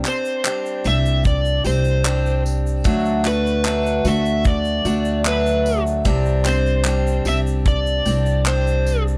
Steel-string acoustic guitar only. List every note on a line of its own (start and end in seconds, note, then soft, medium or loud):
0.04 0.44 C4 soft
0.04 0.45 D4 soft
0.04 0.45 G4 soft
0.44 0.85 G3 medium
0.44 0.85 C4 medium
0.44 0.85 D4 medium
0.44 0.83 G4 medium
0.84 1.66 C4 soft
0.84 1.65 D4 soft
0.84 1.63 G4 soft
1.64 2.04 C4 soft
1.64 2.05 D4 soft
1.64 2.05 G4 medium
2.04 2.84 G3 medium
2.04 2.85 C4 medium
2.04 2.85 D4 medium
2.04 2.86 G4 medium
2.84 3.25 D3 medium
2.84 3.25 F#3 medium
2.84 3.25 A3 medium
2.84 3.24 D4 loud
2.84 3.23 F#4 medium
3.24 3.65 A3 soft
3.24 3.65 D4 soft
3.24 3.65 F#4 medium
3.65 4.05 F#3 medium
3.65 4.06 A3 medium
3.65 4.05 D4 medium
3.65 4.03 F#4 medium
4.05 4.87 A3 soft
4.05 4.86 D4 soft
4.05 4.84 F#4 medium
4.85 5.25 A3 soft
4.85 5.25 D4 medium
4.85 5.25 F#4 medium
5.24 6.05 F#3 medium
5.24 6.06 A3 medium
5.24 6.06 D4 medium
5.24 6.06 F#4 medium
6.05 6.45 C3 medium
6.05 6.46 G3 loud
6.05 6.46 C4 medium
6.05 6.45 D4 medium
6.05 6.44 G4 medium
6.45 6.85 C4 soft
6.45 6.86 D4 soft
6.45 6.85 G4 medium
6.85 7.26 G3 medium
6.85 7.26 C4 medium
6.85 7.26 D4 medium
6.85 7.25 G4 medium
7.26 8.07 C4 soft
7.26 8.07 D4 soft
7.26 8.05 G4 medium
8.05 8.46 C4 soft
8.05 8.46 D4 soft
8.05 8.46 G4 soft
8.46 9.18 G3 medium
8.46 9.18 C4 medium
8.46 9.18 D4 medium
8.46 9.18 G4 medium